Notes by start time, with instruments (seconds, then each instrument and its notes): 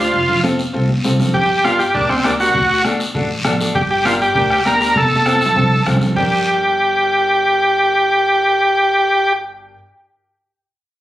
Already playing: transistor combo organ F4
0.00 upright piano D4 G4 C5
0.14 upright bass F1, long guiro
0.29 low conga
0.43 upright piano C4 F4 A4, high conga, short guiro
0.59 short guiro
0.73 upright bass C2, upright piano C4 F4 A4, long guiro
0.89 high conga
1.04 upright bass C2, upright piano C4 F4 A4, high conga, short guiro
1.19 upright piano C4 F4 A4, low conga, short guiro
1.34 upright bass G1, transistor combo organ G4, bombo low, long guiro
1.64 upright piano D4 G4 A#4, transistor combo organ F4, bombo rim, high conga, short guiro
1.79 transistor combo organ G4, short guiro
1.94 upright bass D2, transistor combo organ D4, upright piano D4 G4 A#4, bombo low, long guiro
2.09 transistor combo organ C4, bombo rim, high conga
2.24 upright bass D2, upright piano D4 G4 A#4, transistor combo organ D4, bombo rim, high conga, short guiro
2.39 upright piano D4 G4 A#4, transistor combo organ F#4, short guiro
2.55 upright bass D2, bombo low, long guiro
2.85 upright piano D4 F#4 A4, bombo rim, high conga, short guiro
3.00 short guiro
3.15 upright bass A1, upright piano D4 F#4 A4, bombo low, long guiro
3.45 upright bass A1, upright piano D4 F#4 A4, bombo rim, high conga, low conga, short guiro
3.60 upright piano D4 F#4 A4, short guiro
3.75 upright bass G1, transistor combo organ G4, bombo low, long guiro
3.91 transistor combo organ G4
4.05 upright piano D4 G4 A#4, transistor combo organ F4, bombo rim, high conga, short guiro
4.21 transistor combo organ G4, short guiro
4.35 upright bass D2, upright piano D4 G4 A#4, bombo low, long guiro
4.50 bombo rim
4.65 upright bass D2, upright piano D4 G4 A#4, transistor combo organ A#4, bombo rim, high conga, short guiro
4.80 upright piano D4 G4 A#4, transistor combo organ A#4, short guiro
4.96 upright bass F1, transistor combo organ A4, bombo low, high conga, long guiro
5.06 high conga
5.16 high conga
5.26 upright piano C4 F4 A4, bombo rim, short guiro
5.36 high conga
5.41 short guiro
5.46 low conga
5.55 upright bass C2, upright piano C4 F4 A4, bombo low, low conga, long guiro
5.76 low conga
5.86 upright bass C2, upright piano C4 F4 A4, bombo low, bombo rim, short guiro
5.96 low conga
6.01 upright piano C4 F4 A4, short guiro
6.07 low conga
6.15 upright bass G1, upright piano D4 G4, transistor combo organ G4, bombo low, low conga, long guiro
6.19 upright piano A#4